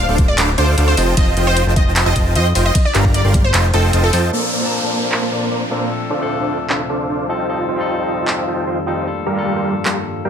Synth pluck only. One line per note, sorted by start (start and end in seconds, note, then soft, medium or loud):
0.00 0.20 F5 loud
0.28 0.49 D5 medium
0.58 0.79 C5 loud
0.88 1.09 C5 loud
1.17 1.38 D#5 loud
1.47 1.68 C5 loud
1.76 1.97 D#5 loud
2.06 2.27 D#5 loud
2.36 2.57 D#5 loud
2.66 2.79 D#5 medium
2.85 3.06 D5 loud
3.14 3.36 D5 loud
3.44 3.65 C5 loud
3.74 3.95 A4 loud
4.04 4.25 A4 loud